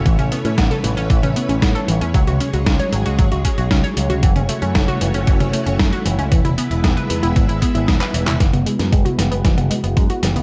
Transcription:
Already playing: string machine A3 C#4 E4 C#5
0.06 picked electric bass A1, synth arpeggio sound E3, string machine B4, kick, closed hi-hat
0.19 picked electric bass A1, synth arpeggio sound C#4, closed hi-hat, high tom
0.32 synth arpeggio sound B3, closed hi-hat
0.45 picked electric bass A2, synth arpeggio sound C#4, closed hi-hat
0.58 picked electric bass A1, synth arpeggio sound B3, kick, snare, closed hi-hat
0.71 synth arpeggio sound A4, closed hi-hat, high tom
0.84 picked electric bass A1, synth arpeggio sound E3, closed hi-hat
0.97 picked electric bass A1, synth arpeggio sound C#4, closed hi-hat
1.10 picked electric bass A1, synth arpeggio sound E3, kick, closed hi-hat
1.23 picked electric bass A1, synth arpeggio sound C#4, closed hi-hat, high tom
1.36 synth arpeggio sound B3, closed hi-hat
1.49 picked electric bass A1, synth arpeggio sound C#4, closed hi-hat
1.62 picked electric bass A2, synth arpeggio sound B3, kick, snare, closed hi-hat
1.75 synth arpeggio sound A4, closed hi-hat
1.88 picked electric bass A1, synth arpeggio sound E3, closed hi-hat
2.01 picked electric bass E2, synth arpeggio sound C#4, closed hi-hat
2.14 picked electric bass C#2, string machine F#3 G#3 G#4, synth arpeggio sound F#3, kick, closed hi-hat
2.27 picked electric bass C#2, synth arpeggio sound F#4, closed hi-hat, high tom
2.40 synth arpeggio sound C#4, closed hi-hat
2.53 picked electric bass C#2, synth arpeggio sound F#4, closed hi-hat
2.66 picked electric bass C#2, synth arpeggio sound C#4, kick, snare, closed hi-hat
2.79 synth arpeggio sound C#5, closed hi-hat
2.93 picked electric bass G#1, synth arpeggio sound F#3, closed hi-hat
3.06 picked electric bass C#2, synth arpeggio sound F#4, closed hi-hat
3.19 picked electric bass G#1, synth arpeggio sound F#3, kick, closed hi-hat
3.32 picked electric bass C#2, synth arpeggio sound F#4, closed hi-hat
3.45 synth arpeggio sound C#4, kick, closed hi-hat
3.58 picked electric bass B1, synth arpeggio sound F#4, closed hi-hat
3.71 picked electric bass C#2, synth arpeggio sound C#4, kick, snare, closed hi-hat
3.84 synth arpeggio sound C#5, closed hi-hat
3.97 picked electric bass C#2, synth arpeggio sound F#3, closed hi-hat
4.10 picked electric bass C#2, synth arpeggio sound F#4, closed hi-hat, high tom
4.23 picked electric bass F#1, synth arpeggio sound E3, string machine A3 C#4 E4 F#4 C#5, kick, closed hi-hat
4.36 picked electric bass F#1, synth arpeggio sound C#4, closed hi-hat, high tom
4.49 synth arpeggio sound A3, closed hi-hat
4.62 picked electric bass F#2, synth arpeggio sound C#4, closed hi-hat
4.75 picked electric bass F#1, synth arpeggio sound A3, kick, snare, closed hi-hat
4.88 synth arpeggio sound F#4, closed hi-hat, high tom
5.01 picked electric bass F#1, synth arpeggio sound E3, closed hi-hat
5.14 picked electric bass F#1, synth arpeggio sound C#4, closed hi-hat
5.27 picked electric bass F#1, synth arpeggio sound E3, kick, closed hi-hat
5.40 picked electric bass F#1, synth arpeggio sound C#4, closed hi-hat, high tom
5.53 synth arpeggio sound A3, closed hi-hat
5.66 picked electric bass F#1, synth arpeggio sound C#4, closed hi-hat
5.79 picked electric bass F#2, synth arpeggio sound A3, kick, snare, closed hi-hat
5.93 synth arpeggio sound F#4, closed hi-hat
6.06 picked electric bass F#1, synth arpeggio sound E3, closed hi-hat
6.18 picked electric bass C#2, synth arpeggio sound C#4, closed hi-hat
6.32 picked electric bass E1, synth arpeggio sound E3, string machine G#3 B3 B4 E5, kick, closed hi-hat
6.45 picked electric bass E1, synth arpeggio sound E4, closed hi-hat, high tom
6.58 synth arpeggio sound B3, closed hi-hat
6.71 picked electric bass E1, synth arpeggio sound E4, closed hi-hat
6.84 picked electric bass E1, synth arpeggio sound B3, kick, snare, closed hi-hat
6.97 synth arpeggio sound B4, closed hi-hat, high tom
7.10 picked electric bass E2, synth arpeggio sound E3, closed hi-hat
7.23 picked electric bass E1, synth arpeggio sound E4, closed hi-hat
7.36 picked electric bass G#1, synth arpeggio sound E3, kick, closed hi-hat
7.49 picked electric bass G#1, synth arpeggio sound E4, closed hi-hat
7.62 synth arpeggio sound B3, kick, closed hi-hat
7.75 picked electric bass G#1, synth arpeggio sound E4, closed hi-hat
7.88 picked electric bass E1, synth arpeggio sound B3, kick, snare, closed hi-hat
8.01 synth arpeggio sound B4, clap, closed hi-hat
8.14 picked electric bass E1, synth arpeggio sound E3, closed hi-hat
8.27 picked electric bass E1, synth arpeggio sound E4, clap, closed hi-hat, high tom
8.40 picked electric bass F#1, synth arpeggio sound E3, string machine G#3 B3 E4 F#4 B4, kick, snare, closed hi-hat
8.53 picked electric bass F#1, synth arpeggio sound B3, closed hi-hat, high tom
8.66 synth arpeggio sound G#3, closed hi-hat
8.79 picked electric bass F#2, synth arpeggio sound B3, snare, closed hi-hat
8.92 picked electric bass F#1, synth arpeggio sound G#3, kick, closed hi-hat
9.05 synth arpeggio sound F#4, closed hi-hat, high tom
9.18 picked electric bass F#1, synth arpeggio sound E3, snare, closed hi-hat
9.31 picked electric bass F#1, synth arpeggio sound B3, closed hi-hat
9.45 picked electric bass F#1, synth arpeggio sound E3, kick, snare, closed hi-hat
9.58 picked electric bass F#1, synth arpeggio sound B3, closed hi-hat, high tom
9.71 synth arpeggio sound G#3, closed hi-hat
9.84 picked electric bass F#1, synth arpeggio sound B3, closed hi-hat
9.97 picked electric bass F#2, synth arpeggio sound G#3, kick, closed hi-hat
10.10 synth arpeggio sound F#4, closed hi-hat
10.23 picked electric bass F#1, synth arpeggio sound E3, snare, closed hi-hat
10.36 picked electric bass C#2, synth arpeggio sound B3, closed hi-hat

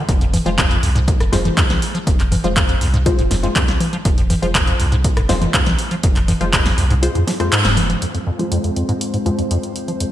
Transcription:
Already playing: synth stab G#3 F4 C5
0.09 sub bass F1, acid bass F2, kick, closed hi-hat
0.21 acid bass F2, closed hi-hat
0.33 acid bass F2, open hi-hat, low conga
0.46 sub bass F1, acid bass F3, synth stab G#3 F4 C5, closed hi-hat
0.58 acid bass F2, kick, clap, closed hi-hat
0.71 acid bass F2, closed hi-hat
0.83 sub bass C2, acid bass F2, open hi-hat
0.95 acid bass G#2, closed hi-hat
1.08 kick, closed hi-hat
1.20 sub bass F1, acid bass G#2, cross-stick, closed hi-hat
1.32 acid bass F2, synth stab G#3 F4 C5, snare, open hi-hat
1.45 acid bass F2, closed hi-hat, low conga
1.57 acid bass F2, kick, clap, closed hi-hat
1.70 sub bass C2, snare, closed hi-hat, low conga
1.82 open hi-hat
1.94 acid bass F3, closed hi-hat
2.07 sub bass F1, acid bass F2, kick, closed hi-hat
2.19 acid bass F2, clap, closed hi-hat
2.31 acid bass F2, open hi-hat, low conga
2.44 sub bass F1, acid bass F3, synth stab G#3 F4 C5, closed hi-hat
2.56 acid bass F2, kick, clap, closed hi-hat
2.69 acid bass F2, closed hi-hat
2.81 sub bass C2, acid bass F2, open hi-hat
2.94 acid bass G#2, closed hi-hat
3.06 synth stab G#3 F4 C5, kick, closed hi-hat
3.18 sub bass F1, acid bass G#2, closed hi-hat
3.31 acid bass F2, snare, open hi-hat
3.43 acid bass F2, synth stab G#3 F4 C5, closed hi-hat
3.56 acid bass F2, kick, clap, closed hi-hat
3.68 sub bass C2, snare, closed hi-hat
3.80 open hi-hat, low conga
3.93 acid bass F3, closed hi-hat
4.05 sub bass F1, acid bass F2, kick, closed hi-hat
4.18 acid bass F2, closed hi-hat
4.30 acid bass F2, open hi-hat, low conga
4.42 sub bass F1, acid bass F3, synth stab G#3 F4 C5, closed hi-hat
4.55 acid bass F2, kick, clap, closed hi-hat
4.67 acid bass F2, closed hi-hat
4.79 sub bass C2, acid bass F2, open hi-hat
4.92 acid bass G#2, closed hi-hat
5.04 kick, closed hi-hat
5.17 sub bass F1, acid bass G#2, cross-stick, closed hi-hat
5.29 acid bass F2, synth stab G#3 F4 C5, snare, open hi-hat
5.41 acid bass F2, closed hi-hat, low conga
5.54 acid bass F2, kick, clap, closed hi-hat
5.66 sub bass C2, snare, closed hi-hat, low conga
5.79 open hi-hat
5.91 acid bass F3, closed hi-hat
6.03 sub bass F1, acid bass F2, kick, closed hi-hat
6.16 acid bass F2, clap, closed hi-hat
6.28 acid bass F2, open hi-hat, low conga
6.41 sub bass F1, acid bass F3, synth stab G#3 F4 C5, closed hi-hat
6.53 acid bass F2, kick, clap, closed hi-hat
6.65 acid bass F2, snare, open hi-hat
6.78 sub bass C2, acid bass F2, open hi-hat
6.90 acid bass G#2, closed hi-hat
7.03 synth stab G#3 F4 C5, closed hi-hat
7.15 sub bass F2, acid bass G#2, closed hi-hat
7.27 acid bass F3, snare, open hi-hat
7.40 acid bass F2, synth stab G#3 F4 C5, cross-stick, closed hi-hat
7.52 acid bass G#2, clap, closed hi-hat
7.65 sub bass F1, snare, closed hi-hat
7.77 acid bass D#2, open hi-hat, low conga
7.89 acid bass F3, closed hi-hat
8.02 acid bass F2, analog synth pad G#3 C4 F4 C5, closed hi-hat
8.14 acid bass F2, closed hi-hat
8.27 acid bass F2
8.39 acid bass F3, synth stab G#3 F4 C5, closed hi-hat
8.51 acid bass F2, closed hi-hat
8.64 acid bass F2, closed hi-hat
8.76 acid bass F2, closed hi-hat
8.89 acid bass G#2, closed hi-hat
9.01 closed hi-hat
9.13 acid bass G#2, closed hi-hat
9.26 acid bass F2, synth stab G#3 F4 C5, closed hi-hat
9.38 acid bass F2, closed hi-hat
9.51 acid bass F2, closed hi-hat
9.63 closed hi-hat
9.76 closed hi-hat
9.88 acid bass F3, closed hi-hat
10.00 acid bass F2, closed hi-hat

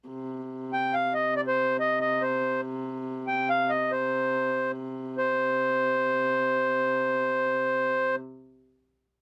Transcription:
0.08 hurdy-gurdy C3
0.73 accordion G5
0.93 accordion F5
1.14 accordion D#5
1.36 accordion D5
1.47 accordion C5
1.80 accordion D#5
2.01 accordion D#5
2.21 accordion C5
3.27 accordion G5
3.49 accordion F5
3.70 accordion D#5
3.91 accordion C5
5.18 hurdy-gurdy C3, accordion C5

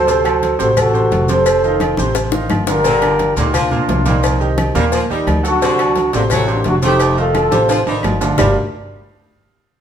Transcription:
Already playing: upright bass D2, trombone section A4 C5
0.07 grand piano C3 C4 C5, cowbell, high conga, low agogo, maracas
0.24 grand piano F#3 F#4 A4, cowbell, high conga, low agogo, claves, maracas
0.43 cowbell, high conga, low timbale, low agogo, maracas
0.59 upright bass A1, grand piano C3 C4 C5, trombone section F#4 A4, cowbell, high conga, maracas
0.77 trombone section F#4 A4, cowbell, high conga, low conga, low agogo, claves, maracas
0.94 grand piano C3 C4 C5, high conga, maracas
1.11 upright bass F1, cowbell, high conga, low timbale, low agogo, maracas
1.28 grand piano C3 C4 C5, trombone section A4 C5, cowbell, high conga, low agogo, maracas
1.46 cowbell, high conga, low agogo, claves, maracas
1.63 grand piano D#3 D#4 F4, high conga, maracas
1.80 cowbell, high conga, low timbale, low agogo, claves, maracas
1.97 upright bass A1, grand piano C3 C4 C5, high conga, maracas
2.15 cowbell, high bongo, high conga, low agogo, maracas
2.32 grand piano D#3 D#4 F4, low bongo, high conga, maracas
2.50 upright bass G1, cowbell, low bongo, high conga, low timbale, low agogo, claves, maracas
2.67 grand piano D3 D4 F4, trombone section G4 A#4, cowbell, low bongo, low agogo, maracas
2.84 grand piano A#2 A#3 A#4, saxophone section D3, cowbell, high conga, low agogo, maracas
3.02 grand piano D3 D4 F4, cowbell, high conga, low agogo, claves, maracas
3.19 cowbell, high conga, low timbale, low agogo, maracas
3.36 upright bass D2, grand piano A#2 A#3 A#4, saxophone section D3, trombone section D#4 G4, cowbell, high conga, maracas
3.54 saxophone section F3, trombone section D4 F4, cowbell, high conga, low conga, low agogo, claves, maracas
3.71 grand piano A#2 A#3 A#4, high conga, low conga, maracas
3.89 upright bass C2, cowbell, high conga, low timbale, low agogo, maracas
4.05 grand piano A#2 A#3 A#4, saxophone section G3, trombone section C4 D#4, cowbell, high conga, low agogo, maracas
4.23 cowbell, high conga, low agogo, claves, maracas
4.40 grand piano D#3 D#4 G4, maracas
4.58 cowbell, high conga, low timbale, low agogo, claves, maracas
4.75 upright bass D#2, grand piano A#2 A#3 A#4, saxophone section G3, high conga, maracas
4.92 saxophone section F3, cowbell, high conga, low agogo, maracas
5.10 upright bass D#2, grand piano D#3 D#4 G4, saxophone section G3, high conga, maracas
5.27 upright bass D2, cowbell, high conga, low timbale, low agogo, claves, maracas
5.43 grand piano F#3 F#4 A4, cowbell, low agogo, maracas
5.47 trombone section D4 F#4
5.62 grand piano C3 C4 C5, saxophone section D3, cowbell, high conga, low agogo, maracas
5.78 grand piano F#3 F#4 A4, cowbell, high conga, low agogo, claves, maracas
5.96 cowbell, high conga, low timbale, low agogo, maracas
6.13 upright bass A1, grand piano C3 C4 C5, saxophone section D3, trombone section A#3 D4, cowbell, high conga, maracas
6.30 saxophone section F#3, trombone section A3 C4, cowbell, high conga, low conga, low agogo, claves, maracas
6.48 grand piano C3 C4 C5, trombone section A#3 D4, high conga, maracas
6.64 upright bass F1, trombone section D4 F#4, cowbell, high conga, low timbale, low agogo, maracas
6.82 grand piano C3 C4 C5, saxophone section A3, trombone section D#4 G4, cowbell, high conga, low agogo, maracas
7.00 cowbell, low agogo, claves, maracas
7.17 grand piano D#3 D#4 F4, trombone section F4 A4, high conga, maracas
7.34 cowbell, high conga, low timbale, low agogo, claves, maracas
7.51 upright bass A1, grand piano C3 C4 C5, saxophone section G3, high conga, maracas
7.69 saxophone section F3, cowbell, high conga, high timbale, low agogo, maracas
7.86 upright bass A1, grand piano D#3 D#4 F4, saxophone section G3, high conga, high timbale, maracas
8.03 upright bass G1, cowbell, high conga, low timbale, low agogo, claves, maracas
8.21 grand piano D3 D4 F4, cowbell, low timbale, low agogo, maracas
8.37 upright bass G1, grand piano G3 D4 F4 G4 A#4 D5, saxophone section G3, trombone section G4, low bongo, low conga, low timbale, claves, maracas

